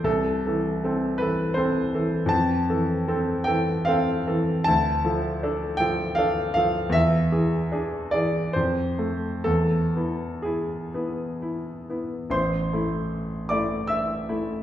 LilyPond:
\new Staff \with { instrumentName = "Grand piano" } { \time 3/4 \key a \minor \tempo 4 = 77 << { a'4. b'8 c''8 r8 | a''4. g''8 f''4 | a''4. g''8 f''8 f''8 | e''4. d''8 c''4 |
a'4 gis'4. r8 | <c'' c'''>4. <d'' d'''>8 <e'' e'''>4 | } \\ { c,8 <e a'>8 <c' a'>8 <e a'>8 <c' a'>8 <e a'>8 | f,8 <e a'>8 <c' a'>8 <e a'>8 <c' a'>8 <e a'>8 | d,8 <f a'>8 <d' a'>8 <f a'>8 <d' a'>8 <f a'>8 | e,8 <e gis'>8 <d' gis'>8 <e gis'>8 f,8 <a a'>8 |
e,8 <b e'>8 e'8 <b e'>8 e'8 <b e'>8 | a,,8 <a e'>4 <a e'>4 <a e'>8 | } >> }